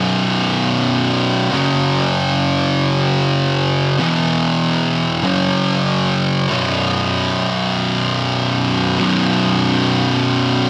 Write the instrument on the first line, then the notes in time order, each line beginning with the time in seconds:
distorted electric guitar
Already playing: B1 F#2 B2
1.50 F#2 C#3 F#3
3.99 E2 B2 E3
5.23 F#2 C#3 F#3
6.48 B1 F#2 B2
8.99 B1 F#2 B2